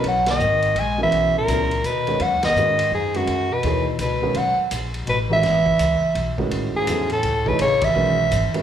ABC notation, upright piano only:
X:1
M:3/4
L:1/8
Q:"Swing" 1/4=167
K:Elyd
V:1 name="Upright piano"
z4 z [C,F,B,EA]- | [C,F,B,EA]2 [C,F,B,EA] z2 [D,G,CFc] | z2 [D,G,CFB] z2 [D,G,CFB] | z2 [E,A,DGc] z2 [D,G,CFB] |
z4 z [D,G,CFB] | z4 z [=A,,D,G,CFB]- | [K:Alyd] [A,,D,G,CFB]2 [C,F,B,EA] z2 [E,A,DGc] | z2 [D,G,CFB] z2 [D,G,CFB] |]